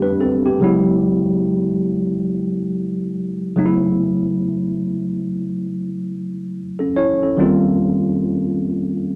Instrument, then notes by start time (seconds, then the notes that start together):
tine electric piano
Already playing: D3 G3 A3 B3 C4 D4 G4
0.02 D4 B4
0.20 C4 A4
0.46 B3 G4
0.60 C#3 F#3 G#3 B3 E4
3.56 C#3 F#3 A3 B3 D#4
3.66 E4
6.79 C#4 A4
6.96 E4 C#5
7.23 C#4 A4
7.37 D#3 G3 A#3 C4 F4